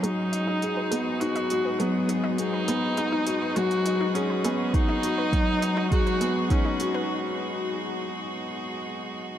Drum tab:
HH |x-x-x-x-xxx-x-x-|x-x-x-x-xxx-x-x-|x-x-x-x-xxx-x-x-|----------------|
BD |----------------|----------------|o---o---o---o---|----------------|